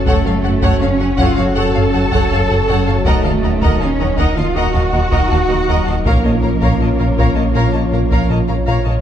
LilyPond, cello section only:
\new Staff \with { instrumentName = "Cello section" } { \time 4/4 \key bes \minor \tempo 4 = 80 a4 des'8 f'16 ges'16 a'2 | a4 des'8 ees'16 f'16 ges'2 | bes2. r4 | }